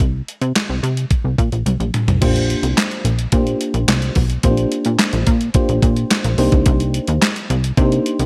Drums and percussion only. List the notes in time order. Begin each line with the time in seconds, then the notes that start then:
0.00 kick, closed hi-hat
0.28 closed hi-hat
0.42 closed hi-hat
0.56 snare, clap, closed hi-hat
0.84 closed hi-hat
0.97 closed hi-hat
1.11 kick, closed hi-hat
1.38 kick, closed hi-hat
1.52 closed hi-hat
1.66 closed hi-hat, high tom
1.80 closed hi-hat
1.94 closed hi-hat, mid tom
2.08 closed hi-hat, floor tom
2.22 kick, closed hi-hat, crash
2.36 closed hi-hat
2.50 closed hi-hat
2.63 closed hi-hat
2.78 snare, clap, closed hi-hat
2.91 closed hi-hat
3.05 closed hi-hat
3.19 closed hi-hat
3.32 kick, closed hi-hat
3.47 closed hi-hat
3.61 closed hi-hat
3.74 closed hi-hat
3.88 snare, clap, closed hi-hat
4.02 closed hi-hat
4.15 kick, open hi-hat
4.30 closed hi-hat
4.43 kick, closed hi-hat
4.57 closed hi-hat
4.72 closed hi-hat
4.85 closed hi-hat
4.99 snare, clap, closed hi-hat
5.13 closed hi-hat
5.27 kick, closed hi-hat
5.41 closed hi-hat
5.54 kick, closed hi-hat
5.69 closed hi-hat
5.82 kick, closed hi-hat
5.96 closed hi-hat
6.11 snare, clap, closed hi-hat
6.24 closed hi-hat
6.38 open hi-hat
6.52 kick, closed hi-hat
6.66 kick, closed hi-hat
6.80 closed hi-hat
6.94 closed hi-hat
7.07 closed hi-hat
7.22 snare, clap, closed hi-hat
7.36 closed hi-hat
7.50 closed hi-hat
7.64 closed hi-hat
7.77 kick, closed hi-hat
7.92 closed hi-hat
8.06 closed hi-hat
8.19 closed hi-hat